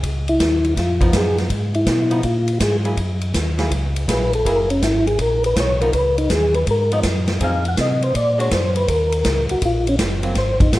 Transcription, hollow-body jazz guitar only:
1.01 1.48 F3 medium
1.01 1.48 B3 medium
1.01 1.48 D#4 medium
2.10 2.22 F3 medium
2.10 2.22 B3 medium
2.10 2.22 D#4 medium
2.85 2.96 F#3 medium
2.85 2.96 A#3 medium
2.85 2.96 E4 medium
2.85 2.96 G#4 medium
3.58 3.69 F#3 medium
3.58 3.70 A#3 medium
3.58 3.70 E4 medium
3.58 3.70 G#4 medium
4.08 4.30 F#3 medium
4.08 4.30 A#3 medium
4.08 4.30 E4 medium
4.08 4.30 G#4 medium
4.45 4.67 F#3 medium
4.45 4.67 A#3 medium
4.45 4.67 E4 medium
4.45 4.68 G#4 medium
5.81 5.92 F3 medium
5.81 5.92 B3 medium
5.81 5.93 D#4 medium
6.92 7.02 F3 medium
6.92 7.03 B3 medium
6.92 7.03 D#4 medium
7.40 7.62 F3 medium
7.40 7.62 C4 medium
7.40 7.62 D#4 medium
7.40 7.62 G#4 medium
8.38 8.49 G#3 medium
8.38 8.50 D4 medium
8.38 8.50 F#4 medium
10.23 10.34 F#3 medium
10.23 10.34 A#3 medium
10.23 10.35 C4 medium

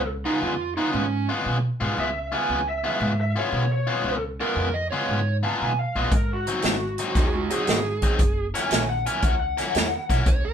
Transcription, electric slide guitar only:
0.26 0.42 D#4 medium
0.43 0.76 F4 medium
0.77 0.93 D#4 medium
0.93 1.27 C#4 medium
4.41 4.74 A#4 medium
4.74 4.90 D#5 medium
4.91 5.36 C#5 medium
7.17 7.32 E4 medium
7.17 7.34 G#4 medium
7.33 7.49 G#3 medium
7.33 7.50 F4 medium
7.50 8.46 G#4 medium
10.28 10.44 C#5 medium
10.45 10.53 A#4 loud

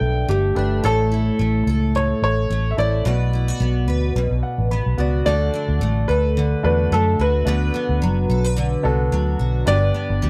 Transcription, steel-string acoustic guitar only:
0.00 0.83 G2 medium
0.00 0.28 A3 medium
0.00 0.55 D4 soft
0.00 0.84 A4 medium
0.28 1.39 A3 medium
0.56 0.90 D4 medium
0.84 1.94 A2 medium
0.84 1.66 A4 medium
1.12 2.77 E4 medium
1.39 2.49 A3 medium
1.67 3.05 A4 medium
1.95 3.05 A2 medium
2.50 3.12 A3 medium
2.78 3.12 E4 medium
3.05 4.15 B2 medium
3.05 3.87 B4 medium
3.33 3.48 E4 medium
3.48 4.97 F#4 soft
3.60 4.70 B3 medium
3.88 5.26 B4 medium
4.16 5.32 B2 medium
4.71 5.32 B3 medium
4.98 7.19 F#4 medium
5.26 6.37 D3 medium
5.26 6.08 A4 medium
5.54 7.73 D4 medium
5.81 6.91 A3 medium
6.09 7.47 A4 medium
6.37 7.46 D3 medium
6.92 7.53 A3 medium
7.19 9.39 F#4 medium
7.47 8.56 D3 medium
7.47 8.29 B4 medium
7.74 9.94 B3 medium
8.02 9.11 F#3 medium
8.30 8.44 A4 medium
8.44 9.66 B4 medium
8.57 10.30 D3 medium
9.12 9.73 F#3 medium
9.39 9.73 F#4 medium
9.67 10.30 G2 medium
9.67 10.30 B4 medium
9.95 10.30 B3 medium
10.22 10.30 G3 medium

